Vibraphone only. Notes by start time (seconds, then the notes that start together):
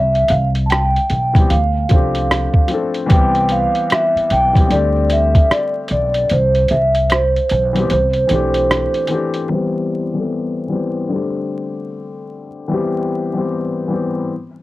Already playing: E5
0.30 F5
0.66 A5
0.70 G5
1.50 F5
3.12 G5
3.52 F5
3.92 E5
4.32 G5
4.72 D5
5.12 E5
5.52 D5
5.92 D5
6.32 C5
6.71 E5
7.10 C5
7.91 C5